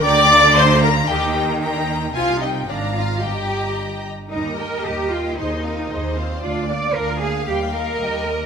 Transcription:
<<
  \new Staff \with { instrumentName = "Violin section" } { \time 2/4 \key ees \major \tempo 4 = 113 << { bes''2 | bes''4 g''4 | aes''4 bes''4 | bes''4. r8 |
ees''2 | c''8 bes'8 c''4 | d''4 f''4~ | f''4 ees''4 | } \\ { g''8 f''8 f''4 | g''4 bes''4 | aes''8 g''8 f''4 | ees''4. r8 |
r2 | r2 | r2 | r2 | } >> }
  \new Staff \with { instrumentName = "Violin section" } { \time 2/4 \key ees \major d'''4 c'''8 bes''8 | g''8 r4. | f''8 ees''8 d''8 f''8 | g''4. r8 |
bes''8 g''8 bes''8 g''8 | ees''8 f''8 ees''8 f''8 | d''8 f''8 d''8 f''8 | g''8 ees''8 g''8 ees''8 | }
  \new Staff \with { instrumentName = "Cello section" } { \time 2/4 \key ees \major d2 | ees2 | c4 aes,4 | g,4. r8 |
ees'8 bes'8 g'8 f'8 | ees'4. r8 | f'8 d''8 bes'8 aes'8 | g'8 bes'4. | }
  \new Staff \with { instrumentName = "Viola section" } { \time 2/4 \key ees \major d''4 c''8 bes'8 | g'8 r4. | f'8 ees'8 d'8 f'8 | g'4. r8 |
<g bes'>8 <bes g'>8 <g bes'>8 <bes g'>8 | <ees' aes'>8 <c' f'>8 <ees' aes'>8 <c' f'>8 | <d' f'>8 <bes d'>8 <d' f'>8 <bes d'>8 | <g g'>8 <bes bes'>8 <g g'>8 <bes bes'>8 | }
  \new Staff \with { instrumentName = "Double bass section" } { \clef bass \time 2/4 \key ees \major d,2 | ees,2 | c,4 aes,,4 | g,,4. r8 |
ees,4 ees,4 | ees,4 ees,4 | d,4 d,4 | ees,4 ees,4 | }
>>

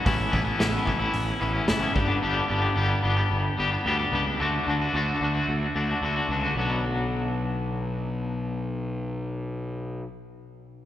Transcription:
<<
  \new Staff \with { instrumentName = "Clean electric guitar" } { \time 4/4 \key b \minor \tempo 4 = 110 <a, e b cis' e'>8 <e b cis' e'>16 <b cis' e'>16 <a, e b cis' e'>8 <e b cis' e'>16 <b cis' e'>8. <e b cis' e'>16 <b cis' e'>16 <a, e b cis' e'>16 <b cis' e'>16 <g, d g b d' g'>16 <g b d' g'>16 | <g, d g b d' g'>8 <g b d' g'>16 <g b d' g'>16 <g, d g b d' g'>8 <g b d' g'>16 <g b d' g'>8. <g b d' g'>16 <g b d' g'>16 <g, d g b d' g'>16 <g b d' g'>16 <g b d' g'>16 <g b d' g'>16 | <d a d' fis'>8 <d a d' fis'>16 <a d' fis'>16 <d a d' fis'>8 <d a d' fis'>16 <a d' fis'>8. <d a d' fis'>16 <a d' fis'>16 <d a d' fis'>16 <a d' fis'>16 <d a d' fis'>16 <a d' fis'>16 | <b, fis b d' fis'>1~ |
<b, fis b d' fis'>1 | }
  \new Staff \with { instrumentName = "Picked electric bass" } { \clef bass \time 4/4 \key b \minor a,,8 a,,8 a,,8 a,,8 a,,8 a,,8 fis,,8 g,,8 | g,,8 g,,8 g,,8 g,,8 g,,8 g,,8 d,8 cis,8 | d,8 d,8 d,8 d,8 d,8 d,8 d,8 cis,8 | b,,1~ |
b,,1 | }
  \new DrumStaff \with { instrumentName = "Drums" } \drummode { \time 4/4 <hho bd>8 bd8 <hho sn>8 bd8 hho4 <hho sn>8 bd8 | r4 r4 r4 r4 | r4 r4 r4 r4 | r4 r4 r4 r4 |
r4 r4 r4 r4 | }
>>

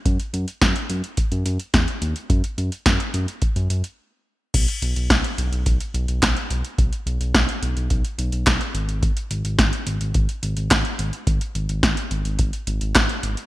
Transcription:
<<
  \new Staff \with { instrumentName = "Analog synth bass" } { \clef bass \time 4/4 \key gis \minor \tempo 4 = 107 fis,16 r16 fis,16 r16 fis,16 r16 fis,16 r8 fis,16 fis,16 r16 e,16 r16 dis,16 r16 | fis,16 r16 fis,16 r16 fis,16 r16 fis,16 r8 fis,16 fis,16 r4 r16 | b,,16 r16 b,,16 b,,16 b,,16 r16 b,,16 b,,16 b,,16 r16 b,,16 b,,16 b,,16 r16 b,,16 r16 | b,,16 r16 b,,16 b,,16 b,,16 r16 b,,16 b,,16 b,,16 r16 b,,16 b,,16 b,,16 r16 gis,,8~ |
gis,,16 r16 gis,,16 gis,,16 gis,,16 r16 gis,,16 gis,,16 gis,,16 r16 gis,,16 gis,,16 gis,,16 r16 gis,,16 r16 | gis,,16 r16 gis,,16 gis,,16 gis,,16 r16 gis,,16 gis,,16 gis,,16 r16 gis,,16 gis,,16 gis,,16 r16 gis,,16 r16 | }
  \new DrumStaff \with { instrumentName = "Drums" } \drummode { \time 4/4 <hh bd>16 hh16 hh16 hh16 <hh bd sn>16 hh16 hh16 hh16 <hh bd>16 hh16 hh16 hh16 <hh bd sn>16 hh16 hh16 hh16 | <hh bd>16 hh16 hh16 hh16 <hh bd sn>16 hh16 hh16 hh16 <hh bd>16 hh16 hh16 hh16 r4 | <cymc hh bd>16 hh16 hh16 hh16 <hh bd sn>16 hh16 hh16 hh16 <hh bd>16 hh16 hh16 hh16 <hc hh bd sn>16 hh16 hh16 hh16 | <hh bd>16 hh16 hh16 hh16 <hh bd sn>16 hh16 hh16 hh16 <hh bd>16 hh16 hh16 hh16 <hc hh bd sn>16 hh16 hh16 hh16 |
<hh bd>16 hh16 hh16 hh16 <hh bd sn>16 hh16 hh16 hh16 <hh bd>16 hh16 hh16 hh16 <hc hh bd sn>16 hh16 hh16 hh16 | <hh bd>16 hh16 hh16 hh16 <hh bd sn>16 hh16 hh16 hh16 <hh bd>16 hh16 hh16 hh16 <hc hh bd sn>16 hh16 hh16 hh16 | }
>>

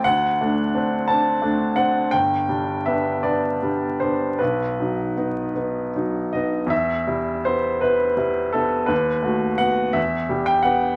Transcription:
<<
  \new Staff \with { instrumentName = "Grand piano" } { \time 6/8 \key e \minor \tempo 4. = 55 fis''4. a''8 r8 fis''8 | g''4 e''8 d''4 c''8 | b'2~ b'8 dis''8 | e''4 c''8 b'4 a'8 |
b'4 fis''8 e''8. g''16 fis''8 | }
  \new Staff \with { instrumentName = "Grand piano" } { \time 6/8 \key e \minor d,8 <a d'>8 <c' d'>8 <c' d'>8 <a d'>8 <c' d'>8 | g,,8 <g d'>8 <b d'>8 <b d'>8 <g d'>8 <b d'>8 | b,,8 <fis dis'>8 <b dis'>8 <b dis'>8 <fis dis'>8 <b dis'>8 | e,8 <g e'>8 <b e'>8 <b e'>8 <g e'>8 <b e'>8 |
dis,8 <a fis'>8 <b fis'>8 e,8 <g g'>8 <b g'>8 | }
>>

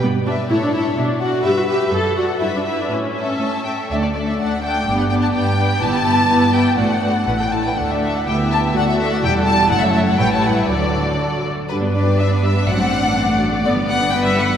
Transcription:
<<
  \new Staff \with { instrumentName = "Violin section" } { \time 2/4 \key d \major \tempo 4 = 124 r8 e''8 e''8 e''8 | r8 fis''8 e''8 e''8 | r8 fis''8 e''8 e''8 | r8 e''8 a''8 g''8 |
e''16 d''16 d''16 e''16 fis''8 g''8~ | g''16 fis''16 g''16 a''16 g''4 | a''4. g''8 | fis''4~ fis''16 g''16 a''16 g''16 |
fis''16 e''16 e''16 fis''16 g''8 a''8 | fis''16 e''16 e''16 fis''16 g''8 a''8 | fis''16 e''16 e''16 fis''16 g''16 a''16 fis''16 e''16 | d''4. r8 |
\key g \major b'2 | d''2~ | d''2 | }
  \new Staff \with { instrumentName = "Violin section" } { \time 2/4 \key d \major << { r8 <b' d''>8 <a' cis''>8 <a' cis''>8 | r8 d''8 <b' e''>8 <b' e''>8 | r8 <a' d''>8 <b' e''>8 <b' e''>8 | r8 <a' e''>4 <a' e''>8 |
d''8 d''8 d''8 d''8 | d''8 d''8 d''8 d''8 | b'8 b'8 b'8 b'8 | d''8 d''8 b'16 a'16 a'16 b'16 |
d''4 e''4 | d''2 | cis''2 | d''4. r8 |
\key g \major b'8 d''8 e''16 d''16 e''8 | fis''4. r8 | d''8 fis''8 g''16 e''16 fis''8 | } \\ { r2 | r2 | r2 | r2 |
a'8 a'8 a'8 a'8 | g'8 g'8 g'8 g'8 | g'8 g'8 g'8 g'8 | fis'8 fis'8 r4 |
a'4 g'4 | a'4 a'4 | a'4 b'4 | a'4. r8 |
r2 | r2 | r2 | } >> }
  \new Staff \with { instrumentName = "Viola section" } { \time 2/4 \key d \major << { b8 d'8 e'16 d'16 e'8 | d'8 fis'8 g'16 fis'16 g'8 | a'8 fis'8 e'16 d'16 e'16 d'16 | cis'4. r8 |
d'8 d'8 d'8 d'8 | d'8 d'8 d'8 d'8 | e'8 e'8 e'8 e'8 | d'8 d'8 e'8 e'8 |
d'4 e'4 | fis'4 e'4~ | e'4 e'4 | fis'4. r8 |
\key g \major g16 b16 d'16 g'16 d'16 b16 g16 b16 | fis16 a16 c'16 d'16 c'16 a16 fis16 a16 | d16 g16 b16 d'16 b16 g16 d16 g16 | } \\ { r2 | r2 | r2 | r2 |
a8 a8 a8 a8 | b8 b8 b8 b8 | b8 b8 b8 b8 | a8 a8 a8 a8 |
a4 b4 | a4 g4 | a4 g4 | fis4. r8 |
d'2 | c'2 | b2 | } >> }
  \new Staff \with { instrumentName = "Cello section" } { \clef bass \time 2/4 \key d \major g,4 a,4 | b,4 g,4 | fis,4 g,4 | a,4 a,4 |
d,4 d,4 | g,4 g,4 | g,4 g,4 | a,4 a,4 |
d,4 d,4 | d,4 e,4 | fis,4 a,4 | d4. r8 |
\key g \major d'2~ | d'2 | b4 b'4 | }
  \new Staff \with { instrumentName = "Double bass section" } { \clef bass \time 2/4 \key d \major r2 | r2 | r2 | r2 |
d,4 r4 | g,,4 r4 | g,,4 r4 | a,,4 a,,4 |
d,4 d,4 | d,4 e,,4 | fis,,4 a,,4 | d,4 r4 |
\key g \major g,2 | a,,2 | g,,2 | }
>>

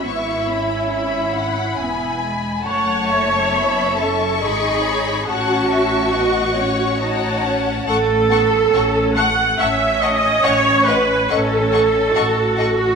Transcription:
<<
  \new Staff \with { instrumentName = "Violin section" } { \time 3/4 \key fis \dorian \tempo 4 = 70 cis'''8 b''8 b''2 | a''4 b''8 cis'''4. | cis'''2 a''4 | cis'''8 cis'''8 cis'''8 cis'''8 cis'''8 cis'''8 |
cis'''8 cis'''8 cis'''8 cis'''8 cis'''8 cis'''8 | }
  \new Staff \with { instrumentName = "Violin section" } { \time 3/4 \key fis \dorian << { r2. | a''2 b''4 | a''4 fis''4 fis''4 | a''8 a''8 a''8 a''8 a''8 a''8 |
fis''8 fis''8 fis''8 fis''8 fis''8 fis''8 | } \\ { e''4 e''8 fis''8 gis''4 | fis''8 e''4. dis''8 cis''8 | fis''8 e''8 dis''8 cis''8 cis''4 | fis''8 fis''8 fis''8 fis''8 fis''8 fis''8 |
dis''8 dis''8 dis''8 dis''8 dis''8 dis''8 | } >> }
  \new Staff \with { instrumentName = "Viola section" } { \time 3/4 \key fis \dorian e'2~ e'8 r8 | cis''4. a'8 gis'4 | fis'2~ fis'8 r8 | a'4. fis''8 e''8 dis''8 |
cis''8 b'8 a'4.~ a'16 fis'16 | }
  \new Staff \with { instrumentName = "Cello section" } { \time 3/4 \key fis \dorian b8 cis'4. b8 gis8 | a4 b8 cis'8 dis'4 | cis'4 b8 cis'8 dis'8 cis'8 | a8 b8 cis'8 a8 cis'4~ |
cis'4 cis'4 fis'4 | }
  \new Staff \with { instrumentName = "Double bass section" } { \clef bass \time 3/4 \key fis \dorian gis,,2 e,,4 | fis,,2 gis,,4 | a,,2. | a,,4 a,,4 a,,4 |
a,,4 a,,4 a,,4 | }
>>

